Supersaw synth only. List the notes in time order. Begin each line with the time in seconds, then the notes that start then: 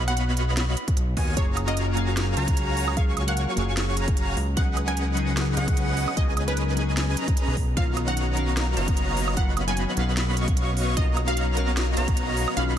Already playing: B3 F#4 C#5 D#5 F5 B5
1.17 B3 F#4 C#5 D#5 F5 G#5
1.37 F#4 C#5 F5 G#5 A#5
2.37 F#4 C#5 F5 G#5 A#5
2.97 F#4
3.97 F#4 C#5 F5 G#5 A#5
4.57 C#4 G#4 B4 D#5 F#5
5.57 C#4 G#4 B4 D#5 F#5
6.17 C#4 G#4 B4 D#5 G#5
7.17 C#4 G#4 B4 D#5 A#5
7.77 B3 F#4 C#5 D#5 F5 A#5
8.77 B3 F#4 C#5 D#5 F5 A#5
10.37 B3 F#4 C#5 D#5 F5 C#6
10.97 A#5
11.97 B3 F#4 C#5 D#5 F5 A#5
12.57 B3 F#4 C#5 D#5 F5 B5